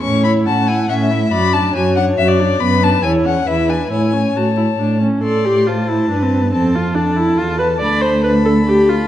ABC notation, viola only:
X:1
M:3/4
L:1/16
Q:1/4=139
K:A
V:1 name="Viola"
C2 E2 C2 E2 C2 E2 | F2 D2 F2 D2 F2 D2 | B,2 D2 E2 C2 E2 D2 | E2 C2 F2 E2 D2 C2 |
[K:Am] A2 G2 F2 E2 D C2 B, | C2 F2 D2 E2 F2 B2 | d2 c2 B2 A2 G2 F2 |]